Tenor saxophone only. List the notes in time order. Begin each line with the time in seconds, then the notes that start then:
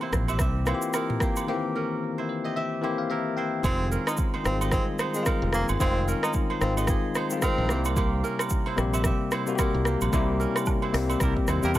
3.64 C4
4.07 D#4
4.45 C4
4.72 C4
5.15 G#3
5.54 A#3
5.80 C4
6.23 D#4
6.61 C4
7.43 C4